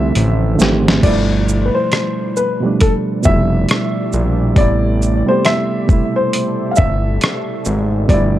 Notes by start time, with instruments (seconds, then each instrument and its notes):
Already playing: analog synth bass C2, reed electric piano D3 F3 A3 C4 D4 E4, ambient pad D3 F3 A3 E4 C5, upright piano D5 E5
0.15 analog synth bass A1, closed hi-hat
0.56 reed electric piano D3 F3 A3, shaker
0.60 analog synth bass G#1, reed electric piano C4 G4, snare
0.88 snare
1.01 analog synth bass G1, reed electric piano B2 F3 G3, ambient pad F3 G3 D4 E4 A4 D5, upright piano D5, kick, closed hi-hat, crash
1.06 reed electric piano A3 E4
1.49 shaker
1.65 upright piano B4
1.75 upright piano C5
1.92 cross-stick, closed hi-hat
2.37 upright piano B4, shaker
2.60 reed electric piano B2 F3 G3
2.65 reed electric piano A3 D4
2.80 ambient pad G4, upright piano A4, kick, closed hi-hat
3.23 analog synth bass F1, reed electric piano B2 F3 G3, upright piano E5, kick, shaker
3.27 reed electric piano A3 E4
3.69 cross-stick, closed hi-hat
4.13 analog synth bass A#1, shaker
4.55 analog synth bass A1, reed electric piano C3 G3 A3, ambient pad A3 A4, upright piano D5, kick, closed hi-hat
4.59 reed electric piano B3 E4
5.02 shaker
5.25 reed electric piano C3 G3 A3, upright piano C5
5.30 reed electric piano B3 G4
5.45 upright piano E5, cross-stick, closed hi-hat
5.87 reed electric piano C3 G3 A3, kick, shaker
5.92 reed electric piano B2 E4
6.16 upright piano C5
6.33 closed hi-hat
6.71 upright piano F5
6.76 analog synth bass G1, upright piano E5, kick, shaker
7.21 cross-stick, closed hi-hat
7.65 analog synth bass G#1, shaker
8.08 analog synth bass G1, reed electric piano B2 F3 G3, upright piano D5, kick, closed hi-hat
8.12 reed electric piano A3 E4